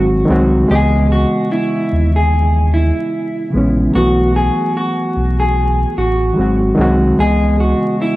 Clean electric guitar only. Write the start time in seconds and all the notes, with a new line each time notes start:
0.71 G#4
1.12 F#4
1.52 E4
2.16 G#4
2.74 E4
3.95 F#4
4.36 G#4
4.77 F#4
5.40 G#4
5.98 F#4
7.20 G#4
7.60 F#4
8.02 E4